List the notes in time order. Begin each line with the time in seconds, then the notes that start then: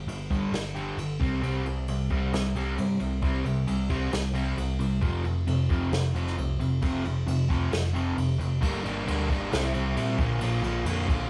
0.07 G1 G2 D3, ride
0.30 G2 D3 G3, kick, ride
0.52 G1 G2 D3, snare, ride
0.75 G2 D3 G3, ride
0.97 G1 G2 D3, ride
1.20 C2 C3 G3 C4, kick, ride
1.42 C2 C3 G3 C4, ride
1.66 C2 C3 G3, ride
1.88 C2 C3 G3, ride
2.10 C2 C3 G3 C4, kick, ride
2.33 C2 C3 G3, snare, ride
2.55 C2 C3 G3 C4, ride
2.78 G2 C3 G3, ride
3.00 C2 C3 G3, ride
3.22 C2 C3 G3 C4, kick, ride
3.44 C2 C3 G3, ride
3.67 C2 C3 G3, ride
3.90 C3 G3 C4, kick, ride
4.12 C2 C3 G3, snare, ride
4.34 C3 G3 C4, ride
4.57 C2 C3 G3, ride
4.79 C2 C3 G3, ride
5.01 F1 F2 C3 F3, kick, ride
5.24 F1 F2 C3, ride
5.47 F1 F2 C3, ride
5.69 F1 F2 C3 F3, kick, ride
5.92 F1 F2 C3, snare, ride
6.15 F1 F2 C3 F3, ride
6.27 snare
6.38 C2 F2 C3, ride
6.60 F1 F2 C3, ride
6.82 F1 F2 C3 F3, kick, ride
7.05 F1 F2 C3, ride
7.27 F1 F2 C3, ride
7.49 F2 C3 F3, kick, ride
7.72 F1 F2 C3, snare, ride
7.93 F2 C3 F3, ride
8.17 F1 F2 C3, ride
8.39 F1 F2 C3, ride
8.61 G1 G2 D3 G3 A#3 D4, kick, crash
8.83 G1 G2 D3 G3 A#3 D4, ride
9.06 D2 G2 D3 G3 A#3 D4, ride
9.29 G1 G2 D3 G3 A#3 D4, kick, ride
9.51 C2 C3 G3 C4 E4, snare, ride
9.72 C2 C3 G3 C4 E4, ride
9.96 A#2 C3 G3 C4 E4, ride
10.18 A#1 A#2 D3 F3 A#3 F4, kick, ride
10.41 A#1 A#2 D3 F3 A#3 F4, ride
10.62 A#1 A#2 D3 F3 A#3 F4, ride
10.84 F2 A#2 D3 F3 A#3 F4, ride
11.07 A#1 A#2 D3 F3 A#3 F4, kick, ride